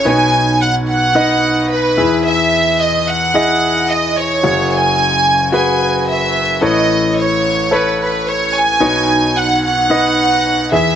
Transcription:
<<
  \new Staff \with { instrumentName = "Violin section" } { \time 4/4 \key b \mixolydian \tempo 4 = 110 gis''4 fis''8 fis''4. b'4 | e''4 dis''8 fis''4. dis''8 cis''8~ | cis''8 gis''4. gis''4 e''4 | dis''4 cis''4 b'8 b'8 cis''8 gis''8~ |
gis''4 fis''8 fis''2 e''8 | }
  \new Staff \with { instrumentName = "Grand piano" } { \time 4/4 \key b \mixolydian <dis' b' cis''>4. r8 <dis' b' dis''>4. <e' gis' e''>8~ | <e' gis' e''>4 r4 <e' gis' dis''>4. r8 | <fis' gis' cis''>4. r8 <fis' gis' b'>4. r8 | <a' b' cis''>4. r8 <a' b' cis''>4. r8 |
<dis' b' cis''>4. r8 <dis' b' dis''>4. <e' gis' e''>8 | }
  \new Staff \with { instrumentName = "Grand piano" } { \clef bass \time 4/4 \key b \mixolydian <b,, b,>2.~ <b,, b,>8 <e, e>8~ | <e, e>2.~ <e, e>8 r8 | <fis,, fis,>1 | <a,, a,>1 |
<b,, b,>2.~ <b,, b,>8 <e, e>8 | }
>>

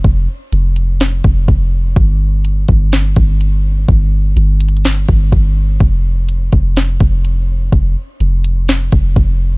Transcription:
<<
  \new Staff \with { instrumentName = "808-style bass" } { \clef bass \time 4/4 \key f \major \tempo 4 = 125 f,,8 r8 f,,4. f,,8 f,,4 | g,,4. g,,4 g,,4. | g,,4 g,,4. g,,8 g,,4 | f,,4. f,,4 f,,4. |
f,,8 r8 f,,4. f,,8 f,,4 | }
  \new DrumStaff \with { instrumentName = "Drums" } \drummode { \time 4/4 <hh bd>4 hh8 hh8 <hh sn>8 <hh bd>8 <hh bd>4 | <hh bd>4 hh8 <hh bd>8 <hh sn>8 <hh bd>8 hh4 | <hh bd>4 \tuplet 3/2 { hh16 r16 r16 hh16 hh16 hh16 } <hh sn>8 <hh bd>8 <hh bd>4 | <hh bd>4 hh8 <hh bd>8 <hh sn>8 <hh bd>8 hh4 |
<hh bd>4 hh8 hh8 <hh sn>8 <hh bd>8 <hh bd>4 | }
>>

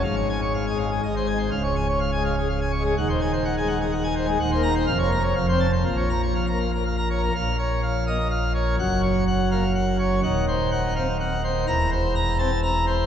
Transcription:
<<
  \new Staff \with { instrumentName = "Pipe organ" } { \time 3/4 \key des \major \tempo 4 = 124 f''16 des''16 aes''16 des''16 f''16 aes''16 f''16 aes'16 ees''16 c''16 aes''16 c''16 | f''16 des''16 aes''16 des''16 f''16 aes''16 f''16 aes'16 f''16 aes''16 des''16 aes'16 | ges''16 c''16 aes''16 c''16 ges''16 aes''16 ges''16 aes'16 ges''16 aes''16 c''16 aes'16 | \key bes \minor ges''16 c''16 bes''16 c''16 f''16 des''16 bes''16 des''16 f''16 c''16 a''16 c''16 |
f''16 des''16 bes''16 des''16 f''16 bes''16 f''16 bes'16 f''16 bes''16 des''16 bes'16 | f''8 des''8 f''8 ees''8 f''8 des''8 | ges''8 des''8 ges''8 f''8 ges''8 des''8 | ges''8 c''8 ges''8 f''8 ges''8 c''8 |
bes''8 c''8 bes''8 a''8 bes''8 c''8 | }
  \new Staff \with { instrumentName = "Pipe organ" } { \clef bass \time 3/4 \key des \major << { aes,4~ \tuplet 3/2 { aes,8 aes8 r8 aes,8 aes8 r8 } | des,4~ \tuplet 3/2 { des,8 aes8 r8 r4 aes8 } | ees,4~ \tuplet 3/2 { ees,8 aes8 r8 r4 aes8 } | \key bes \minor \tuplet 3/2 { ees,8 bes8 r8 f,8 bes8 r8 f,8 c'8 r8 } |
bes,4~ \tuplet 3/2 { bes,8 bes8 r8 r4 bes8 } | bes,4. bes16 r4 r16 | ges,4. bes16 r4 r16 | ees,4. c'16 r4 r16 |
e,4. c'16 r4 r16 | } \\ { aes,,2 aes,,4 | des,,2. | ees,,2. | ees,,4 f,,4 f,,4 |
bes,,2. | bes,,2. | ges,,2. | ees,,2. |
e,,2. | } >> }
>>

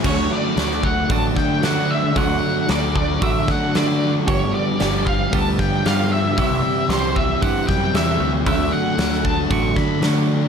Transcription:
<<
  \new Staff \with { instrumentName = "Lead electric guitar" } { \time 4/4 \key d \major \tempo 4 = 114 cis''8 d''4 fis''8 a''8 g''8 fis''8 e''8 | fis''4 d''8 d''8 e''8 fis''8 d''8. r16 | cis''8 d''4 f''8 a''8 g''8 f''8 e''8 | e''4 c''8 e''8 fis''8 g''8 e''8. r16 |
e''8 fis''4 a''8 cis'''8 b''8 r4 | }
  \new Staff \with { instrumentName = "Overdriven electric guitar" } { \time 4/4 \key d \major <d fis a d' fis'>4 <fis a d' fis'>4 <d fis a d' fis'>4 <fis a d' fis'>4 | <d fis a d' fis'>4 <fis a d' fis'>4 <d fis a d' fis'>4 <fis a d' fis'>4 | <g, d f g b g'>4 <f g b g'>4 <g, d f g b g'>4 <f g b g'>4 | <c e g e' g'>4 <e g e' g'>4 <c e g e' g'>4 <e g e' g'>4 |
<d fis a d' fis'>4 <fis a d' fis'>4 <d fis a d' fis'>4 <fis a d' fis'>4 | }
  \new Staff \with { instrumentName = "Distorted electric guitar" } { \clef bass \time 4/4 \key d \major <d a d'>4 <d a d'>4 <d a d'>8 <a d'>8 <d a d'>4 | <d a d'>4 <d a d'>4 <d a d'>8 <a d'>8 <d a d'>4 | <g, d g>4 <g, d g>4 <g, d g>8 <d g>8 <g, d g>4 | <c g c'>4 <c g c'>4 <c g c'>8 <g c'>8 <c g c'>4 |
<d a d'>4 <d a d'>4 <d a d'>8 <a d'>8 <d a d'>4 | }
  \new Staff \with { instrumentName = "Picked electric bass" } { \clef bass \time 4/4 \key d \major d,8 r8 d,4 a,,8 d8 d4 | d,8 r8 d,4 a,,8 d8 d4 | g,,8 r8 g,,4 d,8 g,8 g,4 | c,8 r8 c,4 g,8 fis,8 e,8 d,8 |
d,8 r8 d,4 a,,8 d8 d4 | }
  \new DrumStaff \with { instrumentName = "Drums" } \drummode { \time 4/4 <cymc bd>4 <hho sn>16 sn16 bd8 <hho bd>8 <bd sn>8 <hho sn>4 | <hho bd>4 <hho sn>8 bd8 <hho bd>8 <bd sn>8 <hho sn>4 | <hho bd>4 <hho sn>8 bd8 <hho bd>8 <bd sn>8 <hho sn>4 | <hho bd>4 <hho sn>8 bd8 <hho bd>8 <bd sn>8 <hho sn>4 |
<hho bd>4 <hho sn>16 sn16 bd8 <hho bd>8 <bd sn>8 <hho sn>4 | }
>>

